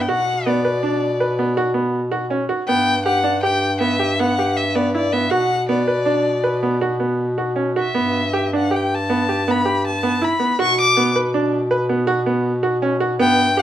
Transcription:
0.01 violin G5
0.09 bass clarinet B2, grand piano F#4, violin F#5
0.46 grand piano B3, violin D5
0.65 grand piano B4
0.83 grand piano D4
1.20 grand piano B4
1.39 grand piano B3
1.57 grand piano F#4
1.74 grand piano B3
2.12 grand piano F#4
2.30 grand piano C#4
2.49 grand piano F#4
2.67 bass clarinet G2, grand piano B3, violin G5
3.06 grand piano G4, violin F#5
3.24 grand piano D4
3.43 grand piano G4, violin G5
3.80 grand piano B3, violin E5
3.99 grand piano G4
4.20 grand piano B3, violin F#5
4.39 grand piano G4
4.57 violin E5
4.75 grand piano B3, violin D5
4.95 grand piano E4, violin D5
5.13 grand piano B3, violin E5
5.30 bass clarinet B2, grand piano F#4, violin F#5
5.69 grand piano B3, violin D5
5.88 grand piano B4
6.06 grand piano D4
6.44 grand piano B4
6.63 grand piano B3
6.81 grand piano F#4
7.00 grand piano B3
7.38 grand piano F#4
7.56 grand piano C#4
7.76 grand piano F#4, violin E5
7.95 bass clarinet G2, grand piano B3
8.33 grand piano G4
8.53 grand piano D4, violin F#5
8.71 grand piano G4
8.76 violin G5
8.95 violin A5
9.10 grand piano B3
9.29 grand piano G4
9.48 grand piano B3, violin B5
9.65 grand piano G4
9.87 violin A5
10.03 grand piano B3
10.22 grand piano E4, violin B5
10.40 grand piano B3
10.59 bass clarinet B2, grand piano F#4, violin C#6
10.81 violin D6
10.97 grand piano B3
11.16 grand piano B4
11.34 grand piano D4
11.71 grand piano B4
11.89 grand piano B3
12.07 grand piano F#4
12.26 grand piano B3
12.63 grand piano F#4
12.82 grand piano C#4
13.00 grand piano F#4
13.19 bass clarinet G2, grand piano B3, violin G5
13.57 grand piano G4

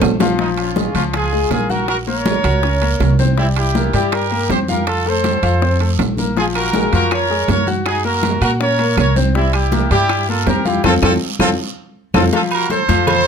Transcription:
Already playing: grand piano A3 A4 C5
0.02 upright bass A#1, low bongo, high conga, low timbale, short guiro, claves
0.20 grand piano F3 F4 F5, low bongo, high conga, low timbale, short guiro
0.38 grand piano F3 F4, horn section A#3 D#4, high bongo, high conga, long guiro
0.58 horn section C#4 F4, high bongo, high conga, high timbale
0.76 grand piano G#3 G#4, high bongo, high conga, low timbale, short guiro
0.95 upright bass C#2, grand piano F3 F4, horn section C#4 F4, high conga, high timbale, short guiro
1.13 horn section F4 G#4, high bongo, high conga, high timbale, long guiro
1.32 grand piano G#3 G#4, high bongo, high conga
1.51 upright bass A#1, grand piano A#3 A#4, horn section F4 G#4, high bongo, low bongo, high conga, high timbale, low timbale, short guiro
1.70 grand piano F#4 F#5, horn section F#4 A#4, high bongo, high conga, short guiro
1.88 horn section F#4 A#4, high bongo, high conga, high timbale, long guiro
2.07 grand piano A#3 A#4, horn section A#4 C#5, high bongo, high conga
2.26 high bongo, high conga, high timbale, low timbale, short guiro
2.44 upright bass C#2, grand piano F#4 F#5, high conga, high timbale, short guiro
2.63 grand piano C#4 C#5, high bongo, high conga, long guiro
2.82 grand piano A#3 A#4, high bongo, high conga, high timbale
3.00 upright bass C2, high bongo, low bongo, high conga, high timbale, low timbale, short guiro
3.19 grand piano C4 C5, high bongo, high conga, short guiro
3.38 grand piano G3 G4, horn section C4 E4, high bongo, high conga, long guiro
3.56 horn section E4 G4, high bongo, high conga, high timbale
3.75 grand piano A#3 A#4, high bongo, high conga, low timbale, short guiro
3.93 upright bass G2, grand piano G3 G4, horn section E4 G4, high conga, high timbale, short guiro
4.12 horn section G4 A#4, high bongo, high conga, high timbale, long guiro
4.31 grand piano A#3 A#4, high bongo, high conga
4.49 upright bass F2, grand piano C4 C5, horn section G4 C5, high bongo, low bongo, high conga, high timbale, low timbale, short guiro
4.68 grand piano F4 F5, horn section G4 A#4, high bongo, high conga, short guiro
4.87 horn section F4 A4, high bongo, high conga, high timbale, long guiro
5.06 grand piano A3 A4, horn section A4 C5, high bongo, high conga
5.24 high bongo, high conga, high timbale, low timbale, short guiro
5.43 upright bass F2, grand piano F4 F5, high conga, high timbale, short guiro
5.61 grand piano C4 C5, high bongo, high conga, long guiro
5.80 grand piano A3 A4, high bongo, high conga, high timbale
5.99 upright bass A#1, high bongo, low bongo, high conga, high timbale, low timbale, short guiro
6.17 grand piano A#3 A#4, high bongo, high conga, short guiro
6.36 grand piano F3 F4, horn section F4 G#4, high bongo, high conga, long guiro
6.55 horn section F#4 A#4, high bongo, high conga, high timbale, claves
6.73 grand piano G#3 G#4, high bongo, high conga, low timbale, short guiro
6.92 upright bass F2, grand piano F3 F4, horn section F#4 A#4, high conga, high timbale, short guiro
7.11 horn section A#4 C#5, high bongo, high conga, high timbale, long guiro, claves
7.30 grand piano G#3 G#4, high bongo, high conga
7.48 upright bass F#2, grand piano A#3 A#4, horn section A#4 C#5, high bongo, low bongo, high conga, high timbale, low timbale, short guiro
7.67 grand piano F#4 F#5, high bongo, high conga, short guiro
7.86 horn section D#4 G#4, high bongo, high conga, high timbale, long guiro, claves
8.04 grand piano A#3 A#4, horn section F#4 A#4, high bongo, high conga
8.23 high bongo, high conga, high timbale, low timbale, short guiro
8.41 upright bass A#2, grand piano F#4 F#5, horn section F#4 A#4, high conga, high timbale, short guiro, claves
8.60 grand piano C#4 C#5, horn section A#4 C#5, high bongo, high conga, long guiro
8.79 grand piano A#3 A#4, high bongo, high conga, high timbale
8.97 upright bass C2, horn section A#4 C#5, high bongo, low bongo, high conga, high timbale, low timbale, short guiro, claves
9.16 grand piano C4 C5, high bongo, high conga, short guiro
9.35 grand piano G3 G4, horn section C4 E4, high bongo, long guiro
9.53 horn section E4 G4, high bongo, high conga, high timbale, claves
9.72 grand piano A#3 A#4, high bongo, high conga, low timbale, short guiro
9.91 upright bass G2, grand piano G3 G4, horn section E4 G4, high conga, high timbale, short guiro
10.09 high bongo, high conga, high timbale, long guiro, claves
10.28 grand piano A#3 A#4, horn section F4 A4, high bongo, high conga
10.47 upright bass F2, grand piano C4 C5, horn section G4 A#4, high bongo, low bongo, high conga, high timbale, low timbale, short guiro
10.65 horn section E4 G4, grand piano F4 F5, high bongo, high conga, short guiro
10.84 upright bass F2, grand piano C4 F4 A4, horn section C4 F4 A4, low bongo, high conga, high timbale, long guiro, claves
11.02 upright bass F2, grand piano C4 F4 A4, horn section C4 F4 A4, low bongo, high conga, high timbale, long guiro, claves
11.39 upright bass F2, grand piano C4 F4 A4, horn section C4 F4 A4, low bongo, high conga, high timbale, claves
12.14 upright bass F2, grand piano C4 F4 A4, horn section C4 F4 A4, low bongo, high conga, high timbale, long guiro, claves
12.33 grand piano F3 F4 F5, horn section F4 A4, cowbell, low agogo, long guiro
12.51 horn section F#4 A#4, high conga, low agogo, claves
12.70 grand piano A3 A4 C5, horn section A4 C5, cowbell, high conga, short guiro
12.88 upright bass F2, grand piano F3 F4 F5, cowbell, high conga, low agogo, short guiro
13.07 horn section A4 C5, cowbell, high conga, low conga, low agogo, long guiro, claves

